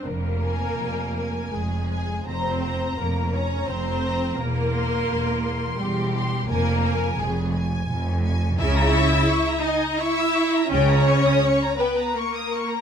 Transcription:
0.05 F1 F2 A#3 A#4
0.44 G#5
0.79 F1 F2
1.18 G#5
1.53 F1 F2 G#3 G#4
1.90 G#5
2.25 F1 F2 C4 C5 A#5
2.62 A#5
2.97 F1 F2 A#3 A#4
3.33 C#4 C#5 A#5
3.67 F1 F2 C4 C5
4.04 A#5
4.37 E1 E2 A#3 A#4
4.74 C6
5.08 E1 E2
5.43 C6
5.77 E1 E2 G3 G4
6.14 C6
6.47 F1 F2 A#3 A#4 G#5
6.83 G#5
7.17 F1 F2 G#3 G#4
7.53 G#5
7.88 F1 F2
8.22 G#5
8.57 C#2 C#3 E4 E5 G#5
8.75 A#5
8.93 C#6
9.10 E6
9.29 C#6
9.48 A#5
9.62 D#4 D#5 G#5
9.85 A#5
9.98 E4 E5 C#6
10.18 E6
10.36 C#6
10.54 A#5
10.68 C#2 C#3 C#4 C#5 G5
10.88 A#5
11.07 C#6
11.25 D#6
11.44 C#6
11.63 A#5
11.77 B3 B4 G5
11.98 A#5
12.15 A#3 A#4 C#6
12.35 D#6
12.53 C#6
12.69 A#5

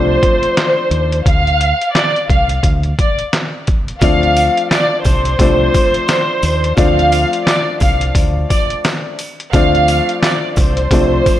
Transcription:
Already playing: C2 F3 A3 C4 D4 C5
0.23 kick, closed hi-hat
0.43 closed hi-hat
0.57 snare, clap, closed hi-hat
0.91 D#2, closed hi-hat
1.12 closed hi-hat
1.26 D2 F5, kick, closed hi-hat
1.47 closed hi-hat
1.61 closed hi-hat
1.81 closed hi-hat
1.93 D5, snare, clap, closed hi-hat
2.16 closed hi-hat
2.30 C2 F5, kick, closed hi-hat
2.49 closed hi-hat
2.63 D2, kick, closed hi-hat
2.83 closed hi-hat
2.99 D5, kick, closed hi-hat
3.19 closed hi-hat
3.33 snare, clap, closed hi-hat
3.67 kick, closed hi-hat
3.88 closed hi-hat
4.00 D2 F3 A3 C4 D4 F5, kick, closed hi-hat, sleigh bells
4.23 closed hi-hat
4.36 closed hi-hat, sleigh bells
4.57 closed hi-hat
4.71 D5, snare, clap, closed hi-hat, sleigh bells
5.04 C2 C5, kick, closed hi-hat, sleigh bells
5.25 closed hi-hat
5.39 C2 F3 A3 C4 D4, kick, closed hi-hat, sleigh bells
5.74 kick, closed hi-hat, sleigh bells
5.94 closed hi-hat
6.08 snare, clap, closed hi-hat, sleigh bells
6.43 D#2, closed hi-hat, sleigh bells
6.64 closed hi-hat
6.77 D2 F3 A3 C4 D4 F5, kick, closed hi-hat, sleigh bells
6.99 closed hi-hat
7.12 closed hi-hat, sleigh bells
7.33 closed hi-hat
7.46 D5, snare, clap, closed hi-hat, sleigh bells
7.80 C2 F5, kick, closed hi-hat, sleigh bells
8.01 closed hi-hat
8.15 D2, kick, closed hi-hat, sleigh bells
8.50 D5, kick, closed hi-hat, sleigh bells
8.70 closed hi-hat
8.84 snare, clap, closed hi-hat, sleigh bells
9.19 closed hi-hat, sleigh bells
9.40 closed hi-hat
9.52 D2 F3 A3 C4 D4 F5, kick, closed hi-hat, sleigh bells
9.75 closed hi-hat
9.88 closed hi-hat, sleigh bells
10.09 closed hi-hat
10.23 D5, snare, clap, closed hi-hat, sleigh bells
10.56 C2 C5, kick, closed hi-hat, sleigh bells
10.77 closed hi-hat
10.91 C2 F3 A3 C4 D4, kick, closed hi-hat, sleigh bells
11.26 kick, closed hi-hat, sleigh bells

